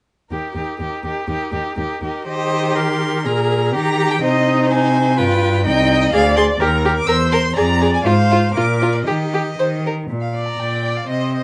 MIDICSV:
0, 0, Header, 1, 5, 480
1, 0, Start_track
1, 0, Key_signature, -3, "major"
1, 0, Tempo, 490998
1, 304, Time_signature, 2, 2, 24, 8
1, 4139, Tempo, 477327
1, 7979, Tempo, 510638
1, 9899, Tempo, 489396
1, 11213, End_track
2, 0, Start_track
2, 0, Title_t, "Violin"
2, 0, Program_c, 0, 40
2, 292, Note_on_c, 0, 70, 32
2, 536, Note_off_c, 0, 70, 0
2, 542, Note_on_c, 0, 70, 27
2, 776, Note_off_c, 0, 70, 0
2, 782, Note_on_c, 0, 70, 27
2, 1007, Note_off_c, 0, 70, 0
2, 1013, Note_on_c, 0, 70, 36
2, 1240, Note_off_c, 0, 70, 0
2, 1246, Note_on_c, 0, 70, 42
2, 1480, Note_off_c, 0, 70, 0
2, 1486, Note_on_c, 0, 70, 34
2, 1724, Note_off_c, 0, 70, 0
2, 1730, Note_on_c, 0, 70, 33
2, 1966, Note_off_c, 0, 70, 0
2, 1972, Note_on_c, 0, 70, 46
2, 2209, Note_off_c, 0, 70, 0
2, 2215, Note_on_c, 0, 75, 85
2, 2698, Note_on_c, 0, 84, 82
2, 2713, Note_off_c, 0, 75, 0
2, 3190, Note_on_c, 0, 82, 75
2, 3204, Note_off_c, 0, 84, 0
2, 3663, Note_off_c, 0, 82, 0
2, 3668, Note_on_c, 0, 82, 84
2, 4018, Note_on_c, 0, 79, 85
2, 4032, Note_off_c, 0, 82, 0
2, 4134, Note_off_c, 0, 79, 0
2, 4140, Note_on_c, 0, 72, 85
2, 4613, Note_on_c, 0, 80, 92
2, 4628, Note_off_c, 0, 72, 0
2, 5090, Note_on_c, 0, 79, 86
2, 5105, Note_off_c, 0, 80, 0
2, 5559, Note_off_c, 0, 79, 0
2, 5565, Note_on_c, 0, 79, 90
2, 5929, Note_on_c, 0, 75, 91
2, 5944, Note_off_c, 0, 79, 0
2, 6034, Note_off_c, 0, 75, 0
2, 6040, Note_on_c, 0, 77, 97
2, 6279, Note_off_c, 0, 77, 0
2, 6284, Note_on_c, 0, 84, 92
2, 6364, Note_off_c, 0, 84, 0
2, 6521, Note_on_c, 0, 82, 73
2, 6877, Note_off_c, 0, 82, 0
2, 6882, Note_on_c, 0, 86, 98
2, 6992, Note_on_c, 0, 88, 93
2, 7007, Note_off_c, 0, 86, 0
2, 7231, Note_off_c, 0, 88, 0
2, 7237, Note_on_c, 0, 84, 92
2, 7473, Note_off_c, 0, 84, 0
2, 7479, Note_on_c, 0, 82, 95
2, 7843, Note_off_c, 0, 82, 0
2, 7864, Note_on_c, 0, 80, 80
2, 7963, Note_off_c, 0, 80, 0
2, 7969, Note_on_c, 0, 77, 94
2, 8431, Note_off_c, 0, 77, 0
2, 8437, Note_on_c, 0, 86, 75
2, 8801, Note_on_c, 0, 74, 70
2, 8815, Note_off_c, 0, 86, 0
2, 8905, Note_off_c, 0, 74, 0
2, 8911, Note_on_c, 0, 75, 76
2, 9636, Note_off_c, 0, 75, 0
2, 10012, Note_on_c, 0, 77, 52
2, 10243, Note_off_c, 0, 77, 0
2, 10274, Note_on_c, 0, 82, 58
2, 10391, Note_on_c, 0, 79, 57
2, 10406, Note_off_c, 0, 82, 0
2, 10752, Note_on_c, 0, 77, 44
2, 10767, Note_off_c, 0, 79, 0
2, 10863, Note_off_c, 0, 77, 0
2, 10869, Note_on_c, 0, 75, 60
2, 11213, Note_off_c, 0, 75, 0
2, 11213, End_track
3, 0, Start_track
3, 0, Title_t, "Viola"
3, 0, Program_c, 1, 41
3, 293, Note_on_c, 1, 63, 30
3, 534, Note_off_c, 1, 63, 0
3, 540, Note_on_c, 1, 63, 29
3, 777, Note_off_c, 1, 63, 0
3, 792, Note_on_c, 1, 63, 32
3, 1020, Note_off_c, 1, 63, 0
3, 1026, Note_on_c, 1, 63, 32
3, 1242, Note_off_c, 1, 63, 0
3, 1248, Note_on_c, 1, 63, 42
3, 1485, Note_off_c, 1, 63, 0
3, 1492, Note_on_c, 1, 63, 37
3, 1723, Note_off_c, 1, 63, 0
3, 1729, Note_on_c, 1, 63, 39
3, 1966, Note_off_c, 1, 63, 0
3, 1972, Note_on_c, 1, 63, 39
3, 2215, Note_off_c, 1, 63, 0
3, 2219, Note_on_c, 1, 72, 71
3, 2688, Note_on_c, 1, 70, 59
3, 2703, Note_off_c, 1, 72, 0
3, 3653, Note_off_c, 1, 70, 0
3, 3659, Note_on_c, 1, 67, 64
3, 4116, Note_off_c, 1, 67, 0
3, 4122, Note_on_c, 1, 75, 83
3, 4598, Note_off_c, 1, 75, 0
3, 4604, Note_on_c, 1, 72, 78
3, 5082, Note_on_c, 1, 71, 81
3, 5097, Note_off_c, 1, 72, 0
3, 5560, Note_off_c, 1, 71, 0
3, 5566, Note_on_c, 1, 75, 88
3, 6048, Note_on_c, 1, 74, 88
3, 6063, Note_off_c, 1, 75, 0
3, 6514, Note_on_c, 1, 70, 78
3, 6530, Note_off_c, 1, 74, 0
3, 6994, Note_off_c, 1, 70, 0
3, 7000, Note_on_c, 1, 72, 85
3, 7476, Note_off_c, 1, 72, 0
3, 7489, Note_on_c, 1, 74, 77
3, 7969, Note_on_c, 1, 72, 84
3, 7984, Note_off_c, 1, 74, 0
3, 8441, Note_off_c, 1, 72, 0
3, 8452, Note_on_c, 1, 70, 68
3, 8922, Note_off_c, 1, 70, 0
3, 8929, Note_on_c, 1, 67, 63
3, 9646, Note_off_c, 1, 67, 0
3, 10385, Note_on_c, 1, 74, 46
3, 10829, Note_off_c, 1, 74, 0
3, 10868, Note_on_c, 1, 72, 51
3, 11213, Note_off_c, 1, 72, 0
3, 11213, End_track
4, 0, Start_track
4, 0, Title_t, "Violin"
4, 0, Program_c, 2, 40
4, 310, Note_on_c, 2, 67, 29
4, 541, Note_off_c, 2, 67, 0
4, 546, Note_on_c, 2, 67, 29
4, 779, Note_off_c, 2, 67, 0
4, 785, Note_on_c, 2, 67, 31
4, 1017, Note_off_c, 2, 67, 0
4, 1033, Note_on_c, 2, 67, 33
4, 1259, Note_off_c, 2, 67, 0
4, 1268, Note_on_c, 2, 67, 43
4, 1490, Note_off_c, 2, 67, 0
4, 1496, Note_on_c, 2, 67, 38
4, 1729, Note_off_c, 2, 67, 0
4, 1743, Note_on_c, 2, 67, 38
4, 1977, Note_off_c, 2, 67, 0
4, 1991, Note_on_c, 2, 67, 34
4, 2225, Note_off_c, 2, 67, 0
4, 2230, Note_on_c, 2, 67, 53
4, 3152, Note_off_c, 2, 67, 0
4, 3184, Note_on_c, 2, 68, 60
4, 3629, Note_off_c, 2, 68, 0
4, 3663, Note_on_c, 2, 67, 65
4, 4104, Note_off_c, 2, 67, 0
4, 4141, Note_on_c, 2, 63, 72
4, 5063, Note_off_c, 2, 63, 0
4, 5101, Note_on_c, 2, 65, 66
4, 5545, Note_off_c, 2, 65, 0
4, 5580, Note_on_c, 2, 63, 73
4, 6019, Note_off_c, 2, 63, 0
4, 6046, Note_on_c, 2, 68, 71
4, 6126, Note_off_c, 2, 68, 0
4, 6283, Note_on_c, 2, 68, 70
4, 6364, Note_off_c, 2, 68, 0
4, 6528, Note_on_c, 2, 67, 63
4, 6608, Note_off_c, 2, 67, 0
4, 6769, Note_on_c, 2, 67, 59
4, 6850, Note_off_c, 2, 67, 0
4, 6999, Note_on_c, 2, 70, 73
4, 7080, Note_off_c, 2, 70, 0
4, 7243, Note_on_c, 2, 70, 68
4, 7324, Note_off_c, 2, 70, 0
4, 7488, Note_on_c, 2, 68, 66
4, 7568, Note_off_c, 2, 68, 0
4, 7733, Note_on_c, 2, 68, 60
4, 7814, Note_off_c, 2, 68, 0
4, 7981, Note_on_c, 2, 65, 69
4, 8056, Note_off_c, 2, 65, 0
4, 8225, Note_on_c, 2, 65, 64
4, 8300, Note_off_c, 2, 65, 0
4, 8461, Note_on_c, 2, 65, 55
4, 8537, Note_off_c, 2, 65, 0
4, 8697, Note_on_c, 2, 65, 55
4, 8772, Note_off_c, 2, 65, 0
4, 8934, Note_on_c, 2, 67, 57
4, 9009, Note_off_c, 2, 67, 0
4, 9185, Note_on_c, 2, 67, 53
4, 9261, Note_off_c, 2, 67, 0
4, 9426, Note_on_c, 2, 72, 70
4, 9502, Note_off_c, 2, 72, 0
4, 9682, Note_on_c, 2, 70, 51
4, 9757, Note_off_c, 2, 70, 0
4, 10156, Note_on_c, 2, 74, 39
4, 10622, Note_off_c, 2, 74, 0
4, 10639, Note_on_c, 2, 74, 38
4, 10865, Note_off_c, 2, 74, 0
4, 10880, Note_on_c, 2, 75, 38
4, 11104, Note_off_c, 2, 75, 0
4, 11119, Note_on_c, 2, 75, 40
4, 11213, Note_off_c, 2, 75, 0
4, 11213, End_track
5, 0, Start_track
5, 0, Title_t, "Cello"
5, 0, Program_c, 3, 42
5, 306, Note_on_c, 3, 39, 32
5, 384, Note_off_c, 3, 39, 0
5, 542, Note_on_c, 3, 39, 34
5, 620, Note_off_c, 3, 39, 0
5, 779, Note_on_c, 3, 39, 37
5, 857, Note_off_c, 3, 39, 0
5, 1018, Note_on_c, 3, 39, 32
5, 1096, Note_off_c, 3, 39, 0
5, 1255, Note_on_c, 3, 39, 43
5, 1333, Note_off_c, 3, 39, 0
5, 1489, Note_on_c, 3, 39, 44
5, 1568, Note_off_c, 3, 39, 0
5, 1733, Note_on_c, 3, 39, 44
5, 1811, Note_off_c, 3, 39, 0
5, 1974, Note_on_c, 3, 39, 31
5, 2052, Note_off_c, 3, 39, 0
5, 2220, Note_on_c, 3, 51, 62
5, 3190, Note_on_c, 3, 46, 63
5, 3204, Note_off_c, 3, 51, 0
5, 3664, Note_on_c, 3, 51, 69
5, 3679, Note_off_c, 3, 46, 0
5, 4130, Note_off_c, 3, 51, 0
5, 4136, Note_on_c, 3, 48, 67
5, 5106, Note_on_c, 3, 43, 68
5, 5121, Note_off_c, 3, 48, 0
5, 5579, Note_on_c, 3, 36, 81
5, 5594, Note_off_c, 3, 43, 0
5, 6045, Note_off_c, 3, 36, 0
5, 6051, Note_on_c, 3, 38, 80
5, 6472, Note_off_c, 3, 38, 0
5, 6524, Note_on_c, 3, 39, 81
5, 6949, Note_off_c, 3, 39, 0
5, 7000, Note_on_c, 3, 40, 71
5, 7428, Note_off_c, 3, 40, 0
5, 7489, Note_on_c, 3, 41, 78
5, 7921, Note_off_c, 3, 41, 0
5, 7974, Note_on_c, 3, 44, 71
5, 8387, Note_off_c, 3, 44, 0
5, 8447, Note_on_c, 3, 46, 68
5, 8872, Note_off_c, 3, 46, 0
5, 8932, Note_on_c, 3, 51, 57
5, 9360, Note_off_c, 3, 51, 0
5, 9415, Note_on_c, 3, 51, 63
5, 9844, Note_off_c, 3, 51, 0
5, 9903, Note_on_c, 3, 46, 44
5, 10331, Note_off_c, 3, 46, 0
5, 10387, Note_on_c, 3, 46, 47
5, 10808, Note_off_c, 3, 46, 0
5, 10863, Note_on_c, 3, 48, 47
5, 11213, Note_off_c, 3, 48, 0
5, 11213, End_track
0, 0, End_of_file